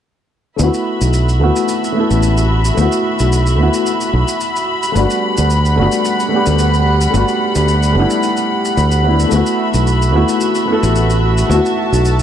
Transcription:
0.56 fingered electric bass D2, grand piano A3 B3, string section F#4 E5 B5, shaker
0.61 grand piano E4 F#4
0.74 shaker
1.01 fingered electric bass B1, shaker
1.13 shaker
1.29 shaker
1.40 fingered electric bass D2, grand piano A3 B3 E4 F#4
1.56 shaker
1.69 shaker
1.84 shaker
1.92 grand piano A3 B3
1.97 grand piano E4 A4
2.11 fingered electric bass A1, shaker
2.23 shaker
2.38 shaker
2.65 shaker
2.74 fingered electric bass D2, grand piano A3 B3, shaker
2.79 grand piano E4 F#4
2.92 shaker
3.19 fingered electric bass B1, shaker
3.33 shaker
3.47 shaker
3.56 fingered electric bass D2, grand piano A3 B3
3.61 grand piano E4 F#4
3.74 shaker
3.86 shaker
4.01 shaker
4.13 fingered electric bass B1
4.28 shaker
4.41 shaker
4.56 shaker
4.83 shaker
4.92 fingered electric bass G1, string section G3 F#5, grand piano A3 B3, shaker
4.97 grand piano D4 F#4
5.10 shaker
5.37 fingered electric bass D2, shaker
5.50 shaker
5.65 shaker
5.76 fingered electric bass G1, grand piano A3 B3 D4 F#4
5.92 shaker
6.05 shaker
6.20 shaker
6.28 grand piano A3 B3
6.33 grand piano D4 G4
6.46 fingered electric bass D2, shaker
6.59 shaker
6.74 shaker
7.01 shaker
7.10 fingered electric bass G1, grand piano A3 B3
7.14 grand piano D4 F#4, shaker
7.28 shaker
7.55 fingered electric bass D2, shaker
7.68 shaker
7.83 shaker
7.92 fingered electric bass G1, grand piano A3 B3
7.97 grand piano D4 E4
8.10 shaker
8.23 shaker
8.37 shaker
8.65 shaker
8.77 fingered electric bass D2, shaker
8.91 shaker
9.03 grand piano A3 B3 D4 E4
9.20 shaker
9.29 fingered electric bass D2, grand piano A3 B3, string section F#4 E5, shaker
9.34 grand piano E4 F#4
9.46 shaker
9.74 fingered electric bass B1, shaker
9.87 shaker
10.02 shaker
10.12 fingered electric bass D2, grand piano A3 B3 E4 F#4
10.29 shaker
10.41 shaker
10.55 shaker
10.65 grand piano A3 B3
10.70 grand piano E4 A4
10.83 fingered electric bass A1, shaker
10.96 shaker
11.10 shaker
11.38 shaker
11.47 fingered electric bass D2, grand piano A3 B3, string section A5
11.51 grand piano E4 F#4, shaker
11.66 shaker
11.92 fingered electric bass B1, shaker
12.05 shaker
12.19 shaker

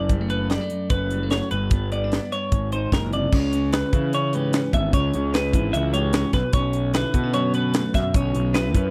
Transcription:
Already playing: picked electric bass F#1, clean electric guitar F#2 D4
0.09 clean electric guitar G3, kick, closed hi-hat
0.21 clean electric guitar A3
0.30 clean electric guitar B4, closed hi-hat
0.50 clean electric guitar G3 D5, snare, closed hi-hat
0.61 clean electric guitar A3
0.70 clean electric guitar F#2, closed hi-hat
0.90 picked electric bass F#1, clean electric guitar C#4 B4, kick, closed hi-hat
1.11 clean electric guitar G3, closed hi-hat
1.23 clean electric guitar A3
1.30 clean electric guitar F#4 C#5, snare, closed hi-hat
1.51 picked electric bass G1, clean electric guitar G2 B4, closed hi-hat
1.71 clean electric guitar B3, kick, closed hi-hat
1.92 clean electric guitar B3 D5, closed hi-hat
2.04 clean electric guitar D4
2.12 clean electric guitar B3, snare, closed hi-hat
2.32 clean electric guitar G2 C#5, closed hi-hat
2.52 picked electric bass G#1, clean electric guitar G#2, kick, closed hi-hat
2.72 clean electric guitar D#4 C5, closed hi-hat
2.92 picked electric bass F#1, clean electric guitar A#2 A#4, kick, snare, closed hi-hat
3.13 clean electric guitar C3 D5, closed hi-hat
3.32 picked electric bass C#2, clean electric guitar C#3 C#5, kick, crash
3.53 clean electric guitar C#4, closed hi-hat
3.73 clean electric guitar B4, snare, closed hi-hat
3.93 picked electric bass C#3, clean electric guitar E3 E4, kick, closed hi-hat
4.13 clean electric guitar C#4 C#5, closed hi-hat
4.33 clean electric guitar G#2 G4 B4, closed hi-hat
4.53 clean electric guitar C#4, snare, closed hi-hat
4.73 picked electric bass G#1, clean electric guitar B3 E5, kick, closed hi-hat
4.93 picked electric bass C#2, clean electric guitar C#3 C#5, kick, closed hi-hat
5.14 picked electric bass C#2, clean electric guitar C#4, closed hi-hat
5.34 clean electric guitar B4, snare, closed hi-hat
5.53 picked electric bass G#1, clean electric guitar E3 E4, kick, closed hi-hat
5.73 picked electric bass C#2, clean electric guitar C#4 E5, closed hi-hat
5.94 clean electric guitar G#2 G4 C#5, closed hi-hat
6.13 clean electric guitar C#4, snare, closed hi-hat
6.33 picked electric bass B1, clean electric guitar B2 B4, kick, snare, closed hi-hat
6.53 picked electric bass B1, clean electric guitar C#5, kick, closed hi-hat
6.57 clean electric guitar C#4
6.73 closed hi-hat
6.94 clean electric guitar D3 E4 B4, snare, closed hi-hat
7.14 picked electric bass B2, clean electric guitar B3, kick, closed hi-hat
7.23 clean electric guitar C#4
7.34 clean electric guitar F#2 F#4 C#5, closed hi-hat
7.54 clean electric guitar C#4 B4, closed hi-hat
7.74 clean electric guitar A3, snare, closed hi-hat
7.94 picked electric bass F#2, clean electric guitar B2 E5, kick, snare, closed hi-hat
8.14 picked electric bass B1, clean electric guitar C#4 C#5, kick, closed hi-hat
8.35 picked electric bass B1, closed hi-hat
8.54 clean electric guitar E4 B4, snare, closed hi-hat
8.75 picked electric bass F#2, clean electric guitar C#4, kick, closed hi-hat

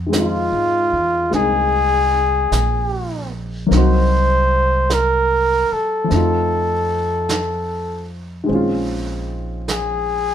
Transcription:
Already playing: upright bass F2, grand piano F#4
0.07 grand piano D#3 G#3
0.12 grand piano C4 D#4, brush sweep, snare, hi-hat pedal
0.18 muted trumpet F4, grand piano F4
0.52 upright bass G#2
0.93 upright bass E2
1.30 upright bass C2, grand piano G#3 A#3 C4 D#4, brush sweep, snare
1.35 muted trumpet G#4
2.52 upright bass A#1, brush sweep, snare, hi-hat pedal
3.67 grand piano F#3 A#3
3.71 upright bass C2, grand piano C4 D#4, muted trumpet C5, brush sweep, snare
3.77 grand piano F#4
4.90 muted trumpet A#4, brush sweep, snare, hi-hat pedal
5.72 muted trumpet A4, muted upright bass stroke
6.04 grand piano F3 A3
6.10 upright bass F2, grand piano C4 D#4, brush sweep, snare
6.16 grand piano F4
7.29 brush sweep, snare, hi-hat pedal
8.44 grand piano D#3 G#3
8.48 upright bass A#1, grand piano C4 C#4, brush sweep
8.55 grand piano F4
9.68 muted trumpet G#4, brush sweep, snare, hi-hat pedal

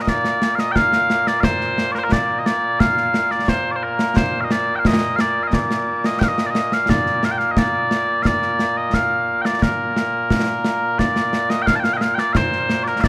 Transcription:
Already playing: bagpipes A#2 A#3
0.01 bagpipes D#5
0.07 bagpipes D5, concert bass drum, snare
0.25 snare
0.42 snare
0.55 bagpipes F5, snare
0.60 bagpipes D#5
0.72 bagpipes G5
0.76 bagpipes F5, concert bass drum, snare
0.93 snare
1.10 snare
1.27 bagpipes D5, snare
1.40 bagpipes C5 F5, concert bass drum, snare
1.61 snare
1.78 snare
1.92 bagpipes A#4 D5, snare
1.99 bagpipes C5
2.04 bagpipes A#4
2.12 bagpipes D5, concert bass drum, snare
2.39 bagpipes D#5
2.46 bagpipes D5, snare
2.80 bagpipes F5, concert bass drum, snare
2.97 snare
3.14 snare
3.31 bagpipes D5, snare
3.48 bagpipes C5, concert bass drum, snare
3.71 bagpipes D5
3.76 bagpipes C5
3.83 bagpipes A#4
3.99 snare
4.16 bagpipes C5, concert bass drum, snare
4.41 bagpipes D#5 F5
4.51 bagpipes D5, snare
4.76 bagpipes F5 G5
4.85 bagpipes D#5, concert bass drum, snare
5.16 bagpipes F5, snare
5.20 bagpipes D5
5.43 bagpipes F5
5.47 bagpipes D#5
5.53 bagpipes D5, concert bass drum, snare
5.71 snare
6.04 bagpipes D#5, snare
6.19 bagpipes G5, concert bass drum, snare
6.24 bagpipes F5
6.28 bagpipes D#5
6.38 snare
6.47 bagpipes D5 D#5
6.55 snare
6.72 bagpipes F5, snare
6.89 bagpipes D5, concert bass drum, snare
7.06 snare
7.23 bagpipes F5, snare
7.31 bagpipes G5
7.38 bagpipes F5, snare
7.51 bagpipes D#5
7.57 bagpipes D5, concert bass drum, snare
7.91 snare
8.23 bagpipes F5, concert bass drum, snare
8.27 bagpipes D5
8.42 snare
8.59 snare
8.77 bagpipes D#5
8.93 bagpipes F5, concert bass drum, snare
9.42 bagpipes D5 G5, snare
9.62 bagpipes A#4, concert bass drum, snare
9.96 snare
10.30 concert bass drum, snare
10.64 snare
10.99 bagpipes D5, concert bass drum, snare
11.16 snare
11.33 snare
11.50 bagpipes D#5, snare
11.62 bagpipes G5
11.66 bagpipes F5, concert bass drum, snare
11.75 bagpipes A5
11.80 bagpipes G5
11.84 bagpipes F5, snare
11.93 bagpipes D#5 G5
12.01 bagpipes F5, snare
12.15 bagpipes G5, snare
12.19 bagpipes D5
12.33 bagpipes C5 F5, concert bass drum, snare
12.52 snare
12.70 snare
12.84 bagpipes D5, snare
12.88 bagpipes A#4
13.01 bagpipes D5 F5, concert bass drum, snare

